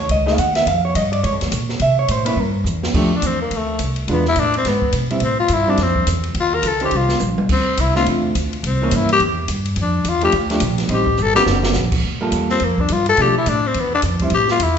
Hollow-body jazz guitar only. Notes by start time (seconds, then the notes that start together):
0.00 C#5
0.11 D#5
0.26 A3 D#4 G#4 F5
0.39 F#5
0.56 E5
0.68 F5
0.85 C#5
0.96 D#5
1.13 D5
1.24 C#5
1.82 E5
1.99 C#5
2.11 C5
2.25 A#3 C#4 E4 B4
2.40 A#4
2.95 F3 A3 D4 G4
4.08 E3 G#3 D4 F4
5.11 G3 C4 E4
5.67 G3 C4 E4
6.81 D#3 C#4 G4 C5
7.96 D3 A3 C4 F4
8.82 E3 A#3 C#4
10.22 F3 A3 D4 G4
10.50 F3 A3 D4 G4
10.89 G3 C4 D#4
11.35 D3 C4 F#4 A#4
12.21 G3 A#3 F4 A4
13.18 F3 A3 D4
14.22 G3 C4 E4